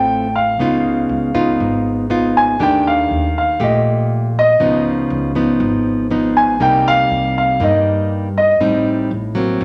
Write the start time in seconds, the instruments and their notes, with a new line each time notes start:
Already playing: upright bass A1, nylon-string guitar A2 A3 C4 F4, grand piano G5
0.35 grand piano F5
0.59 upright bass C#2, nylon-string guitar C#3 B3 D#4 F4
1.09 upright bass C#2
1.35 nylon-string guitar B3 D#4 F4
1.60 upright bass G#1, nylon-string guitar G#2
2.10 nylon-string guitar B3 D#4 F4
2.37 grand piano G#5
2.59 upright bass D#2, nylon-string guitar D#3 A3 D4 G4, grand piano G5
2.87 grand piano F5
3.11 upright bass D#2
3.38 grand piano F5
3.60 upright bass A#1, nylon-string guitar A#2 A3 G4, grand piano D#5
4.39 grand piano D#5
4.60 upright bass C#2, nylon-string guitar C#3 F3 B3 D#4
5.10 upright bass C#2
5.35 nylon-string guitar F3 B3 D#4
5.60 upright bass G#1, nylon-string guitar G#2
6.11 nylon-string guitar F3 B3 D#4
6.37 grand piano G#5
6.60 upright bass C2, nylon-string guitar C3 G3 A#3 D#4, grand piano G5
6.88 grand piano F5
7.10 upright bass C2
7.38 grand piano F5
7.60 upright bass G2, nylon-string guitar G2 G3 A#3 D#4, grand piano D#5
8.38 grand piano D#5
8.60 upright bass A1, nylon-string guitar A2 G3 C4 D#4
9.11 upright bass A1
9.35 nylon-string guitar F#3 A#3 C4
9.61 upright bass G#1, nylon-string guitar G#2